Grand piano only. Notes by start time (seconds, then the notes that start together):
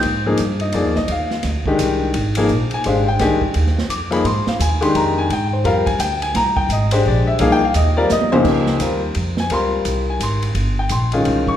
0.26 F3 A#3 D#4 G#4
0.61 D#5
0.74 F3 A#3 D#4 G#4 D5
0.96 D#5
1.12 F5
1.67 D#3 G#3 D4 G4
2.37 F3 A#3 D#4 G#4
2.74 G#5
2.86 G#3 D4 G4 C5 F5
3.08 G5
3.20 D#3 G#3 D4 G4 G#5
3.90 D6
4.11 F3 A#3 D#4 G#4 B5
4.26 C6
4.48 F5
4.61 G#5
4.81 D#3 G#3 D4 G4 C6
4.96 A#5
5.18 G#5
5.33 G5
5.53 C5
5.64 G3 C4 F4 A#4 F5
5.86 G#5
6.00 G5
6.22 G#5
6.36 A#5
6.57 G5
6.72 D#5
6.92 G#3 D4 G4 C5
7.08 D5
7.27 E5
7.40 F3 A#3 D#4 G#4 F5
7.52 G5
7.65 F5
7.76 D#5
7.97 G3 C4 F4 A#4 D5
8.12 D#5
8.32 C#2 F3 A#3 D#4 G4 C5
8.81 G3 C4 F4 A#4
9.40 G#5
9.51 G3 C4 F4 A#4 C6
10.10 G#5
10.23 C6
10.79 G5
10.92 C6
11.13 D#3 G#3 C#4 F4
11.48 C#6